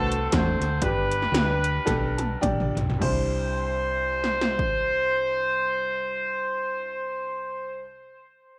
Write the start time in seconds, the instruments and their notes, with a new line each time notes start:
Already playing: fingered electric bass C2, upright piano A3 C4 D4 F#4 B4, horn section C4 F#4 A4
0.12 closed hi-hat
0.32 fingered electric bass E2, upright piano A3 C4 D4 F#4 C5, horn section F#4 A4 C5, kick, snare, closed hi-hat
0.60 fingered electric bass D2, snare, closed hi-hat
0.82 fingered electric bass G1, upright piano G2 D4 G4 B4, horn section D4 G4 B4, kick, closed hi-hat
1.12 closed hi-hat
1.22 snare
1.32 fingered electric bass D2, upright piano D4 G4 B4, snare, closed hi-hat
1.64 closed hi-hat
1.85 fingered electric bass B1, upright piano D4 G4 A4, kick, snare, closed hi-hat
2.17 upright piano A5, closed hi-hat, high tom
2.41 fingered electric bass A#1, upright piano D4 G4 D5 G5, kick, closed hi-hat, mid tom
2.60 mid tom
2.75 fingered electric bass B1, closed hi-hat, floor tom
2.90 floor tom
2.98 upright piano C2 G3 D4 E4, fingered electric bass C2, horn section C5, kick, crash
3.03 upright piano C5
4.24 snare
4.41 snare
4.59 kick